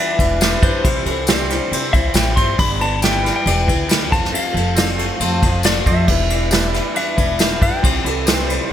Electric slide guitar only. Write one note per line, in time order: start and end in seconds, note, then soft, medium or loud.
0.00 0.64 E5 loud
0.64 1.04 C5 medium
1.93 2.15 E5 loud
2.14 2.37 G5 medium
2.36 2.59 C6 loud
2.59 2.79 B5 loud
2.81 3.03 A5 loud
3.03 3.33 G5 loud
3.36 4.08 G5 loud
4.12 4.34 A5 loud
4.34 5.61 F5 loud
5.66 5.87 D5 medium
5.87 6.92 E5 loud
6.97 7.58 E5 medium
7.62 8.03 G5 medium